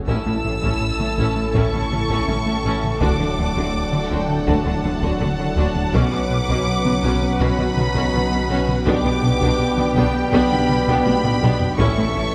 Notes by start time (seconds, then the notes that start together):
0.08 A1 A2 A3 C#4 E4 A4 A5 E6, taiko
0.26 A2 A3 C#4 E4
0.44 A1 A2 C#4 E4
0.62 A2 C#4 E4, taiko
0.81 A2
0.99 A2 A3 C#4 E4, taiko mid
1.18 A1 A2 C#4 E4, taiko
1.36 A3
1.54 A1 A2 C#4 E4 C#6, taiko
1.73 A2 C#4 E4, taiko mid
1.91 A1 A2 C#4 E4, taiko mid
2.09 A2 C#4 E4, taiko
2.27 A1 A2 A3 C#4 E4, taiko mid
2.46 A2 A3 C#4 E4
2.64 A1 A2 C#4 E4
2.83 A2, taiko mid
3.01 D1 D2 D3 F#3 D4 F#4 D5 F#5 D6, taiko
3.20 D3 D4 F#4
3.38 D2 D3 D4 F#4
3.55 D2 D3 D4 F#4, taiko
3.74 D2
3.92 D3 D4 F#4, taiko mid
4.10 D2 D3 D4 F#4 G5, taiko
4.29 D3
4.47 D2 D3 D4 F#4 A5, taiko
4.65 D2 D3 D4 F#4, taiko mid
4.84 D2 D3 D4 F#4, taiko mid
5.02 D2 D3 D4 F#4, taiko
5.20 D2 D3 D4 F#4 A5, taiko mid
5.38 D3 D4 F#4
5.57 D2 D3 D4 F#4
5.75 D2, taiko mid
5.93 B1 B2 F#3 B3 C#4 F#4 B4 D6, taiko
6.12 B2 B3 C#4 F#4
6.30 B1 B2 C#4 F#4
6.48 B2 C#4 F#4, taiko
6.67 B2
6.85 B2 B3 C#4 F#4, taiko mid
7.02 B1 B2 C#4 F#4, taiko
7.22 B3
7.39 B1 B2 C#4 F#4 B5, taiko
7.58 B2 C#4 F#4, taiko mid
7.76 B1 B2 C#4 F#4, taiko mid
7.94 B2 C#4 F#4, taiko
8.13 B1 B2 B3 C#4 F#4, taiko mid
8.31 B2 B3 C#4 F#4
8.49 B1 B2 C#4 F#4
8.68 B2, taiko mid
8.85 B1 B2 G3 B3 D4 G4 B4 G5 D6, taiko
9.04 B2 B3 D4
9.23 B1 B2 B3 D4
9.41 B2 B3 D4, taiko
9.59 B2
9.77 B2 B3 D4, taiko mid
9.95 B1 B2 B3 D4 G5, taiko
10.14 B3
10.32 B1 B2 B3 D4 B5, taiko
10.51 B2 B3 D4, taiko mid
10.69 B1 B2 B3 D4, taiko mid
10.87 B2 B3 D4, taiko
11.04 B1 B2 B3 D4 B5, taiko high
11.24 B2 B3 D4, taiko low-mid
11.42 B1 B2 B3 D4, taiko low-mid
11.60 B2, taiko low
11.78 A1 A2 E3 A3 C#4 E4 A4 C#5 E5 C#6, taiko
11.97 A2 A3 C#4 E4
12.15 A1 A2 C#4 E4